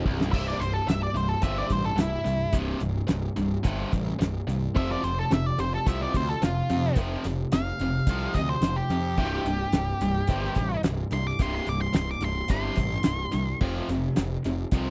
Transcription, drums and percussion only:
0.06 kick
0.21 snare
0.33 kick, crash
0.62 closed hi-hat
0.89 snare, closed hi-hat
1.16 closed hi-hat
1.42 kick, closed hi-hat
1.57 snare
1.70 kick, closed hi-hat
1.98 snare, closed hi-hat
2.26 closed hi-hat
2.53 kick, closed hi-hat
2.80 closed hi-hat
3.08 snare, closed hi-hat
3.36 closed hi-hat
3.64 kick, closed hi-hat
3.92 kick, closed hi-hat
4.21 snare, closed hi-hat
4.49 closed hi-hat
4.76 kick, crash
5.04 closed hi-hat
5.31 snare, closed hi-hat
5.59 closed hi-hat
5.87 kick, closed hi-hat
6.14 kick, closed hi-hat
6.42 snare, closed hi-hat
6.70 closed hi-hat
6.96 kick, closed hi-hat
7.24 closed hi-hat
7.52 snare, closed hi-hat
7.80 closed hi-hat
8.07 kick, closed hi-hat
8.34 kick, closed hi-hat
8.62 snare, closed hi-hat
8.90 closed hi-hat
9.17 kick, crash
9.46 closed hi-hat
9.72 snare, closed hi-hat
10.01 closed hi-hat
10.27 kick, closed hi-hat
10.44 snare
10.55 kick, closed hi-hat
10.83 snare, closed hi-hat
11.11 closed hi-hat
11.39 kick, closed hi-hat
11.67 closed hi-hat
11.94 snare, closed hi-hat
12.21 closed hi-hat
12.48 kick, closed hi-hat
12.76 kick, closed hi-hat
13.03 snare, closed hi-hat
13.32 closed hi-hat
13.61 kick, crash
13.89 closed hi-hat
14.16 snare, closed hi-hat
14.44 closed hi-hat
14.71 kick, closed hi-hat

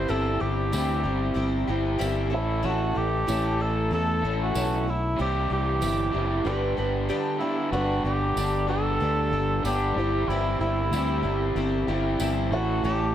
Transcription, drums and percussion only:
0.73 tambourine
2.01 tambourine
3.29 tambourine
4.55 tambourine
5.82 tambourine
8.37 tambourine
9.65 tambourine
10.93 tambourine
12.20 tambourine

